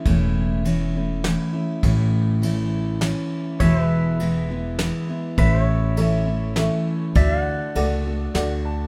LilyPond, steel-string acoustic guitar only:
\new Staff \with { instrumentName = "Steel-string acoustic guitar" } { \time 3/4 \key a \major \tempo 4 = 101 <a, e a cis' e'>4 <e a cis' e'>8 <a cis' e'>8 <e a cis' e'>8 <a cis' e'>8 | <a, e a cis' e'>4 <e a cis' e'>4 <e a cis' e'>4 | <e, b, e gis b e'>4 <e gis b e'>8 <e gis b e'>8 <e gis b e'>8 <e gis b e'>8 | <a, e a cis' e'>4 <e a cis' e'>8 <a cis' e'>8 <e a cis' e'>4 |
<d a d' fis'>4 <d a d' fis'>8 <a d' fis'>8 <d a d' fis'>4 | }